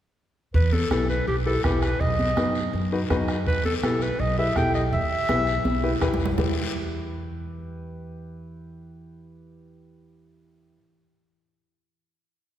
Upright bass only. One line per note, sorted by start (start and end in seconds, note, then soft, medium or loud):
0.54 0.84 E2 loud
0.90 1.20 B1 medium
1.28 1.57 B1 medium
1.64 1.93 B1 medium
2.01 2.30 B1 medium
2.37 2.66 F#2 medium
2.73 3.03 F#2 medium
3.10 3.47 F#2 medium
3.47 3.76 E2 loud
3.83 4.12 B1 medium
4.19 4.48 B1 medium
4.56 4.94 B1 medium
4.92 5.22 E2 loud
5.29 5.58 B1 medium
5.65 5.94 B1 medium
6.02 6.31 B1 medium
6.38 10.76 E2 medium